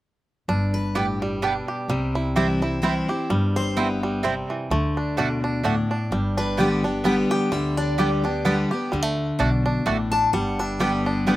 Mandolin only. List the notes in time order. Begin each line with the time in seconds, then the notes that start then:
0.95 B3 G4 D5 G5
1.42 B3 G4 D5 G5
2.36 C4 E4 C5 G5
2.83 C4 E4 C5 G5
3.76 C4 E4 C5 G5
4.23 C4 E4 C5 G5
5.17 A3 F#4 D5 F#5
5.63 A3 F#4 D5 F#5
6.57 B3 G4 D5 G5
7.04 B3 G4 D5 G5
7.98 B3 G4 D5 G5
8.45 B3 G4 D5 G5
9.39 A3 F#4 D5 F#5
9.86 A3 F#4 D5 F#5
10.80 B3 G4 D5 G5
11.27 B3 G4 D5 G5